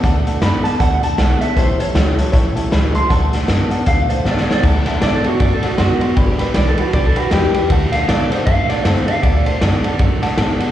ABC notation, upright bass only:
X:1
M:4/4
L:1/8
Q:"Swing" 1/4=157
K:D
V:1 name="Upright bass" clef=bass
D,, z F,, z D,, z B,,, z | A,,, z C,, z A,,, z C,, z | D,, z F,, z D,, z A,, z | [K:Dmix] D,, z A,, z F,, z F,, z |
G,,, z B,,, z B,,, z E,, z | D,, z A,, z F,, z F,, z | D,, z F,, z F,, z A,, z |]